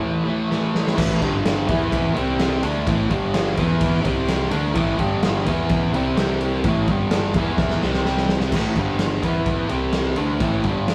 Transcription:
Already playing: E3 A3
0.25 A3
0.30 E3
0.49 A2 E3, snare
0.53 A3
0.75 snare
0.87 snare
0.96 A1 A2 E3 A3, kick, crash
1.21 G1 G2 D3 G3, kick, ride
1.45 snare, ride
1.68 E2 E3 B3 E4, kick, ride
1.92 kick, ride
2.15 C2 C3 G3 C4, ride
2.39 snare, ride
2.62 D2 D3 A3 D4, ride
2.87 A1 A2 E3 A3, kick, ride
3.09 G1 G2 D3 G3, kick, ride
3.34 snare, ride
3.57 E2 E3 B3 E4, kick, ride
3.81 kick, ride
4.05 C2 C3 G3 C4, kick, ride
4.28 snare, ride
4.50 D2 D3 A3 D4, ride
4.73 A1 A2 E3 A3, kick, ride
4.97 G1 G2 D3 G3, kick, ride
5.23 snare, ride
5.46 E2 E3 B3 E4, kick, ride
5.69 kick, ride
5.92 C2 C3 G3 C4, ride
6.17 C2 C3 G3 C4, snare, ride
6.41 ride
6.64 A1 A2 E3, kick, ride
6.68 A3
6.87 G1 G2 D3 G3, kick, ride
7.11 snare, ride
7.34 E2 E3 B3 E4, kick, ride
7.58 kick, snare
7.70 snare
7.82 C2 C3 G3 C4, snare
7.94 snare
8.05 C2 C3 G3 C4, snare
8.17 snare
8.29 snare
8.40 snare
8.52 A1 A2 E3 A3, kick, crash
8.75 G1 G2 D3 G3, kick, ride
8.99 snare, ride
9.22 E2 E3 B3 E4, kick, ride
9.46 kick, ride
9.69 C2 C3 G3 C4, ride
9.92 snare, ride
10.16 D2 D3 A3 D4, ride
10.40 A1 A2 E3 A3, kick, ride
10.64 G1 G2 D3 G3, kick, ride
10.88 snare, ride

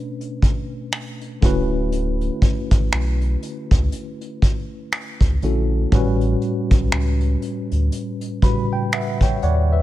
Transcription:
Already playing: B2 A3 C#4 D4 B4
0.21 closed hi-hat
0.42 kick, closed hi-hat
0.92 finger snap, closed hi-hat
1.21 closed hi-hat
1.41 D1 D3 A3 C#4 E4 F#4, kick, closed hi-hat
1.45 B4
1.92 closed hi-hat
2.21 closed hi-hat
2.42 kick, closed hi-hat
2.71 A1, kick, closed hi-hat
2.92 B1, finger snap, closed hi-hat
3.21 closed hi-hat
3.43 closed hi-hat
3.71 C#2, kick, closed hi-hat
3.92 closed hi-hat
4.21 closed hi-hat
4.42 kick, closed hi-hat
4.92 finger snap, closed hi-hat
5.21 C#2, kick, closed hi-hat
5.42 A#1 D3 A3 C#4 E4 F#4 A4, closed hi-hat
5.92 A1 A2 G3 C#4 F#4 B4, kick, closed hi-hat
6.21 closed hi-hat
6.42 closed hi-hat
6.71 B1, kick, closed hi-hat
6.92 C#2, finger snap, closed hi-hat
7.21 closed hi-hat
7.42 closed hi-hat
7.71 D2, closed hi-hat
7.92 closed hi-hat
8.21 closed hi-hat
8.42 A2 C#3 G3 F#4 B4 B5, kick, closed hi-hat
8.73 G5
8.92 B4 E5 F#5, finger snap, closed hi-hat
9.21 C#5 G5, kick, closed hi-hat
9.42 D#2 C#5 D5 F#5, closed hi-hat
9.72 B4 E5

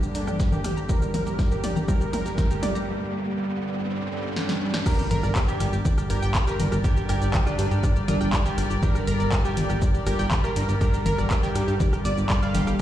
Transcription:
Already playing: G2 D3 G3 A#3 G4, riser
0.03 G4, shaker
0.15 D4 A#4, closed hi-hat, open hi-hat, shaker
0.27 G5, cross-stick, mid tom, shaker
0.40 G2 D3 G3, kick, snare, closed hi-hat, shaker
0.52 G4 A#4, low conga, shaker
0.64 G4, cross-stick, closed hi-hat, open hi-hat, mid tom, shaker
0.77 A#5, shaker
0.89 G2 D3 G3 G4 A#4, kick, closed hi-hat, mid tom, shaker
1.02 G4, shaker
1.14 A#4, closed hi-hat, open hi-hat, mid tom, low conga, shaker
1.27 G4, closed hi-hat, shaker
1.39 G5, kick, snare, open hi-hat, mid tom, shaker
1.51 G4 A#4, shaker
1.64 G2 D3 G3 D5, closed hi-hat, open hi-hat, mid tom, shaker
1.76 A#5, low conga, shaker
1.88 G2 D3 G3 G4 A#4, kick, closed hi-hat, mid tom, shaker
2.01 G4, shaker
2.13 A#4, closed hi-hat, open hi-hat, mid tom, shaker
2.26 G4, snare, shaker
2.38 G5, kick, snare, closed hi-hat, mid tom, low conga, shaker
2.50 G4 A#4, closed hi-hat, shaker
2.63 G2 D3 G3 D5, closed hi-hat, open hi-hat, mid tom, shaker
2.75 A#5, closed hi-hat, shaker
2.88 G2 D3 G3
3.37 G2 D3 G3
3.87 G2 D3 G3
4.12 G2 D3 G3
4.36 G2 D3 G3, snare
4.49 snare
4.61 G2 D3 G3
4.74 snare
4.86 G2 D3 G3 G4 A#4 D5 A#5, kick, cross-stick, closed hi-hat, crash, impact, shaker
4.99 G4, shaker
5.11 G1 A#4 A#5, closed hi-hat, open hi-hat, low conga, shaker
5.23 G1 D5, cross-stick, closed hi-hat, shaker
5.36 G4, kick, snare, clap, open hi-hat, shaker
5.48 G4 G5, shaker
5.60 G1 G2 D3 G3 G4, cross-stick, closed hi-hat, open hi-hat, shaker
5.73 G1 G4, shaker
5.85 D5, kick, closed hi-hat, low conga, shaker
5.98 G4, cross-stick, shaker
6.10 G1 G4 A#4 G5, closed hi-hat, open hi-hat, shaker
6.22 G1 G5, snare, shaker
6.35 G4, kick, cross-stick, snare, clap, closed hi-hat, shaker
6.47 G4 A#4 A#5, closed hi-hat, shaker
6.60 G1 G2 D3 G3, closed hi-hat, open hi-hat, low conga, shaker
6.72 G1 G4, cross-stick, closed hi-hat, shaker
6.84 G2 D3 G3 G4 G5, kick, closed hi-hat, shaker
6.97 G4, shaker
7.09 G1 G4 A#4 G5, cross-stick, closed hi-hat, open hi-hat, shaker
7.22 G1 D5, shaker
7.34 G4, kick, snare, clap, closed hi-hat, low conga, shaker
7.46 D4 G4 D5, cross-stick, shaker
7.59 G2 D3 G3 G4, closed hi-hat, open hi-hat, shaker
7.71 G2 G4, closed hi-hat, shaker
7.83 D5, kick, cross-stick, closed hi-hat, shaker
7.96 G4, shaker
8.08 G1 D4 A#4 D5, closed hi-hat, open hi-hat, low conga, shaker
8.21 G1 G5, cross-stick, shaker
8.33 G4, kick, snare, clap, closed hi-hat, shaker
8.45 G4 G5, shaker
8.58 G1 G2 D3 G3, cross-stick, closed hi-hat, open hi-hat, shaker
8.70 G1 G4, shaker
8.83 G2 D3 G3 G4 A#4 A#5, kick, closed hi-hat, low conga, shaker
8.95 G4, cross-stick, shaker
9.07 G1 A#4 A#5, closed hi-hat, open hi-hat, shaker
9.20 G1 D5, closed hi-hat, shaker
9.32 G4, kick, cross-stick, snare, clap, open hi-hat, shaker
9.45 G4 G5, shaker
9.57 G1 G2 D3 G3 G4, closed hi-hat, open hi-hat, low conga, shaker
9.70 G1 G4, cross-stick, shaker
9.82 D5, kick, closed hi-hat, shaker
9.94 G4, shaker
10.06 G1 G4 A#4 G5, cross-stick, closed hi-hat, open hi-hat, shaker
10.19 G1 G5, snare, shaker
10.31 G4, kick, snare, clap, closed hi-hat, low conga, shaker
10.44 G4 A#4 A#5, cross-stick, closed hi-hat, shaker
10.56 G1 G2 D3 G3, closed hi-hat, open hi-hat, shaker
10.69 G1 G4, closed hi-hat, shaker
10.81 G2 D3 G3 G4 A#4 A#5, kick, cross-stick, closed hi-hat, shaker
10.94 G4, shaker
11.06 G1 A#4 A#5, closed hi-hat, open hi-hat, low conga, shaker
11.18 G1 D5, cross-stick, shaker
11.31 G4, kick, snare, clap, closed hi-hat, shaker
11.43 G4 G5, shaker
11.55 G2 D3 G3 G4, cross-stick, closed hi-hat, open hi-hat, shaker
11.68 G2 G4, closed hi-hat, shaker
11.80 D5, kick, closed hi-hat, low conga, shaker
11.93 G4, cross-stick, shaker
12.05 G1 D5 D6, closed hi-hat, open hi-hat, shaker
12.18 G1, shaker
12.30 G2 D3 G3 D5, kick, cross-stick, snare, clap, closed hi-hat, shaker
12.42 G2 D3 G3 D5 F5 F6, shaker
12.55 G1 G4, closed hi-hat, open hi-hat, low conga, shaker
12.67 G1 G4, cross-stick, shaker

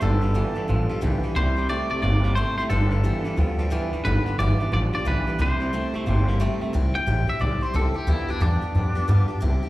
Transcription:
0.01 G1 G2 D3 F3 B3 F4 G4 A4
0.21 G2 D3 F3 B3 F4 G4
0.34 G2 D3 E3 F3 B3 F4 G4
0.55 G2 E3 F3 B3 F4 G4, muted upright bass stroke
0.68 A1 G2 F3 B3 F4 G4
0.89 G2 F3 B3 F4 G4, muted upright bass stroke
1.01 B1 G2 D3 E3 F3 B3 F4 G4
1.23 G2 E3 F3 B3 F4 G4, muted upright bass stroke
1.35 C2 C3 G3 C4 E4 G4 C5
1.57 C3 G3 C4 E4 G4
1.69 C3 G3 A3 C4 E4 G4 D5
1.90 C3 A3 C4 E4 G4 D5, muted upright bass stroke
2.02 G1 C3 G3 A#3 C4 E4 G4 D5
2.24 C3 A#3 C4 E4 G4
2.35 C3 G3 A3 C4 E4 G4 C5
2.58 C3 A3 C4 E4 G4 C5, muted upright bass stroke
2.69 G1 G2 D3 F3 B3 F4 G4 A4
2.91 G2 D3 F3 B3 F4 G4
3.03 G2 D3 E3 F3 B3 F4 G4
3.24 G2 E3 F3 B3 F4 G4, muted upright bass stroke
3.36 D2 G2 F3 B3 F4 G4
3.59 G2 F3 B3 F4 G4
3.70 G2 D3 E3 F3 B3 F4 G4
3.92 G2 E3 F3 B3 F4 G4, muted upright bass stroke
4.04 G1 G2 D3 F3 B3 F4 G4 B4
4.25 G2 D3 F3 B3 F4 G4, muted upright bass stroke
4.38 G1 G2 D3 E3 F3 B3 F4 G4 D5
4.60 G2 E3 F3 B3 F4 G4
4.72 A1 G2 F3 B3 F4 G4 D5
4.93 G2 F3 B3 F4 G4 D5
5.05 B1 G2 D3 E3 F3 B3 F4 G4 B4
5.27 G2 E3 F3 B3 F4 G4, muted upright bass stroke
5.39 C2 C3 G3 C4 E4 G4 C5
5.60 C3 G3 C4 E4 G4
5.73 C3 G3 A3 C4 E4 G4
5.94 C3 A3 C4 E4 G4, muted upright bass stroke
6.06 G1 C3 G3 A#3 C4 E4 G4
6.28 C3 A#3 C4 E4 G4
6.40 C3 G3 A3 C4 E4 G4
6.61 C3 A3 C4 E4 G4, muted upright bass stroke
6.73 C2 C3 G3 C4 E4 G4
6.95 C4 E4 G4 G5, muted upright bass stroke
7.07 A1 C3 G3 C4 E4 G4
7.27 C4 E4 G4 E5, muted upright bass stroke
7.39 B1 G3 C4 E4 G4 D5
7.61 C4 E4 G4 C5, muted upright bass stroke
7.74 C2 C3 G3 C4 E4 G4 A4
7.94 C4 E4 G4, muted upright bass stroke
8.07 D2 G2 D3 F3 B3 E4 F4 G4
8.28 F3 B3 D4 F4 G4, muted upright bass stroke
8.40 E2 G2 D3 F3 B3 D4 F4 G4
8.61 F3 B3 F4 G4, muted upright bass stroke
8.75 F2 F3 B3 F4 G4
8.95 F3 B3 F4 G4, muted upright bass stroke
9.08 G2 D3 F3 B3 F4 G4
9.28 F3 B3 F4 G4, muted upright bass stroke
9.40 C2 C3 G3 C4 E4 G4
9.63 C4 E4 G4, muted upright bass stroke

